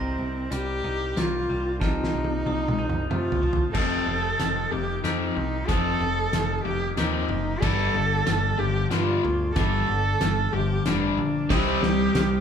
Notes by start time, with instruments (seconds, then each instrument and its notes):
Already playing: picked electric bass C2, clean electric guitar C3, cello C4, pedal steel guitar G4 C5 D#5 A#5, glockenspiel A#6
0.18 picked electric bass C2, clean electric guitar C3
0.52 picked electric bass C2, clean electric guitar G3, cello G4, glockenspiel F6, closed hi-hat
0.84 picked electric bass C2, clean electric guitar D#4
1.17 picked electric bass C2, clean electric guitar A#3, cello F4, glockenspiel G6, snare, closed hi-hat
1.49 picked electric bass C2, clean electric guitar G3
1.80 picked electric bass C2, clean electric guitar C3, cello D#4, pedal steel guitar F4 A5, glockenspiel F6, kick, snare
2.04 snare
2.14 picked electric bass C2, clean electric guitar C3
2.24 high tom
2.46 picked electric bass C2, clean electric guitar F3, glockenspiel D#6, high tom
2.68 mid tom
2.79 picked electric bass C2, clean electric guitar D#4
2.89 mid tom
3.10 picked electric bass C3, clean electric guitar A3, cello F4, glockenspiel F6, mid tom
3.32 floor tom
3.42 picked electric bass C2, clean electric guitar F3
3.53 floor tom
3.73 picked electric bass F1, overdriven electric guitar F2 C3 F3, clean electric guitar F2, pedal steel guitar G4 D#5 F5 G5, cello A4, glockenspiel D#6, kick, snare, crash
4.07 picked electric bass F1, overdriven electric guitar F2 C3, clean electric guitar C3
4.39 picked electric bass F1, overdriven electric guitar F2 C3, clean electric guitar D#3, glockenspiel F6, snare, closed hi-hat
4.71 picked electric bass F1, overdriven electric guitar F2 C3, clean electric guitar A#3, cello G4
5.04 picked electric bass F2, overdriven electric guitar F2 C3 F3, cello D#4, clean electric guitar G4, glockenspiel F6, snare, closed hi-hat
5.36 picked electric bass C2, overdriven electric guitar F2 C3, clean electric guitar C4
5.67 picked electric bass F1, overdriven electric guitar F2 C3 F3, clean electric guitar F2, cello A4, glockenspiel D#6, kick, snare, closed hi-hat
6.00 picked electric bass F1, overdriven electric guitar F2 C3, clean electric guitar C3
6.33 picked electric bass F1, overdriven electric guitar F2 C3, clean electric guitar D#3, glockenspiel F6, snare, closed hi-hat
6.64 picked electric bass F1, overdriven electric guitar F2 C3, clean electric guitar A#3, cello G4
6.97 picked electric bass D#2, overdriven electric guitar F2 C3 F3, cello D#4, clean electric guitar G4, glockenspiel F6, snare, closed hi-hat
7.29 picked electric bass F#1, overdriven electric guitar F2 C3, clean electric guitar C4
7.60 picked electric bass G1, overdriven electric guitar G2 D3 G3, clean electric guitar G2, pedal steel guitar G4 D5, cello A4, glockenspiel D6, kick, snare, crash
7.94 picked electric bass G1, overdriven electric guitar G2 D3, clean electric guitar D3
8.26 picked electric bass G1, overdriven electric guitar G2 D3, clean electric guitar D3, glockenspiel F6, snare, closed hi-hat
8.58 picked electric bass G1, overdriven electric guitar G2 D3, clean electric guitar F3, cello G4
8.91 overdriven electric guitar G2 D3 G3, picked electric bass G2, clean electric guitar D4, cello F4, glockenspiel F6, snare, closed hi-hat
9.23 picked electric bass D2, overdriven electric guitar G2 D3, clean electric guitar A#3
9.55 picked electric bass G1, overdriven electric guitar G2 D3 G3, clean electric guitar G2, cello A4, glockenspiel D6, kick, snare, closed hi-hat
9.87 picked electric bass G1, overdriven electric guitar G2 D3, clean electric guitar D3
10.20 picked electric bass G1, overdriven electric guitar G2 D3, clean electric guitar D3, glockenspiel F6, snare, closed hi-hat
10.53 picked electric bass G1, overdriven electric guitar G2 D3, clean electric guitar F3, cello G4
10.85 picked electric bass F1, overdriven electric guitar G2 D3 G3, cello D4, clean electric guitar D4, glockenspiel F6, snare, closed hi-hat
11.17 picked electric bass A#1, overdriven electric guitar G2 D3, clean electric guitar A#3
11.50 picked electric bass C2, clean electric guitar C3, overdriven electric guitar C3 G3 C4, cello G4, pedal steel guitar C5 D#5, glockenspiel D#6, kick, snare, crash
11.81 picked electric bass C2, overdriven electric guitar C3 G3, clean electric guitar G3, snare
12.14 picked electric bass C2, clean electric guitar C3, overdriven electric guitar C3 G3, glockenspiel F6, snare, closed hi-hat